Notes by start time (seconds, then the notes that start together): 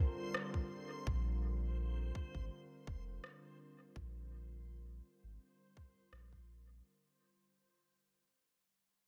Already playing: D3 G3 C4 F4 A#4 C5
0.34 cross-stick
0.54 kick
1.07 A#1, kick
2.15 kick
2.35 G#1, kick
2.87 F1, kick
3.24 cross-stick
3.96 A#1, kick
5.23 G#1
5.77 kick
6.12 A#1, cross-stick
6.33 kick